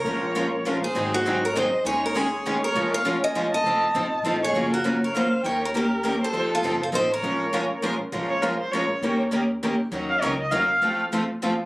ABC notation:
X:1
M:3/4
L:1/8
Q:"Swing" 1/4=201
K:Bbm
V:1 name="Erhu"
d4 z c- | c c2 d e2 | a d d3 d- | d f2 a2 =a- |
=a4- a d- | d B2 d f2 | =g d B3 c- | c =A2 c e d- |
d4 z2 | z d B c d2- | d z4 z | z f d e f2- |
f z4 z |]
V:2 name="Steel-string acoustic guitar"
B4 z A- | A G2 B c2 | d B A3 B- | B d2 e2 e- |
e4- e A- | A G2 B c2 | d B =G3 =A- | =A F2 A c B- |
B4 z2 | z6 | z6 | z6 |
z6 |]
V:3 name="Steel-string acoustic guitar"
[F,A,DFB] z [F,A,DFB] z [F,A,DFB] z | [E,G,CEA] z [E,G,CEA] z [E,G,CEA] z | [E,A,DEA] z [E,A,DEA] z [E,A,DEA] z | [F,A,DFB] z [F,A,DFB] z [F,A,DFB] z |
[F,CE=A] z [F,CEA] z [F,CEA] z | [D,F,B,DG] z [D,F,B,DG] z [D,F,B,DG] z | [E,B,D=GB] z [E,B,DGB] z [E,B,DGB] z | [F,CE=A] z [F,CEA] z [F,CEA] z |
[F,A,DFB] z [F,A,DFB] z [F,A,DFB] z | [F,A,DFB] z [F,A,DFB] z [F,A,DFB] z | [E,B,D=GB] z [E,B,DGB] z [E,B,DGB] z | [E,G,DEB] z [E,G,DEB] z [E,G,DEB] z |
[F,=A,CF=A] z [F,A,CFA] z [F,A,CFA] z |]
V:4 name="Steel-string acoustic guitar"
[F,A,DFB] z [F,A,DFB] z [F,A,DFB] z | [E,G,CEA] z [E,G,CEA] z [E,G,CEA] z | [E,A,DEA] z [E,A,DEA] z [E,A,DEA] z | [F,A,DFB] z [F,A,DFB] z [F,A,DFB] z |
[F,CE=A] z [F,CEA] z [F,CEA] z | [G,DFB] z [G,DFB] z [G,DFB] z | [E,B,D=GB] z [E,B,DGB] z [E,B,DGB] z | [F,CE=A] z [F,CEA] z [F,CEA] z |
[F,A,DFB] z [F,A,DFB] z [F,A,DFB] z | [F,A,DFB] z [F,A,DFB] z [F,A,DFB] z | [E,B,D=GB] z [E,B,DGB] z [E,B,DGB] z | [E,G,DEB] z [E,G,DEB] z [E,G,DEB] z |
[F,=A,CF=A] z [F,A,CFA] z [F,A,CFA] z |]
V:5 name="Upright bass" clef=bass
B,,,6 | A,,,6 | E,,6 | B,,,6 |
F,,,2 B,,,2 =A,,,2 | G,,,6 | E,,6 | F,,2 G,,,2 =A,,,2 |
B,,,6 | B,,,6 | E,,6 | E,,2 D,,2 E,,2 |
F,,6 |]